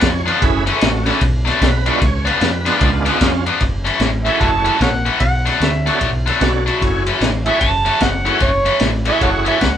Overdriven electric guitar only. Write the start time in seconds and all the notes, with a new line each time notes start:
0.26 C#3 F3 B3 D4
0.66 F#2 E3 A3 C#4
1.06 F#2 E3 A3 C#4
1.45 B2 F#3 A3 D4
1.86 B2 F#3 A3 D4
2.25 C#3 F3 B3 D4
2.65 C#3 F3 B3 D4
3.05 C#3 F3 B3 D4
3.46 C#3 F3 B3 D4
3.85 F#2 E3 A3 C#4
4.25 F#2 E3 A3 C#4
4.64 F#2 E3 A3 C#4
5.05 F#2 E3 A3 C#4
5.46 B2 F#3 A3 D4
5.86 B2 F#3 A3 D4
6.26 B2 F#3 A3 D4
6.66 B2 F#3 A3 D4
7.07 F#2 E3 A3 C#4
7.46 F#2 E3 A3 C#4
7.85 F#2 E3 A3 C#4
8.25 F#2 E3 A3 C#4
8.65 F#2 E3 A3 C#4
9.06 F#2 E3 A3 C#4
9.45 F#2 E3 A3 C#4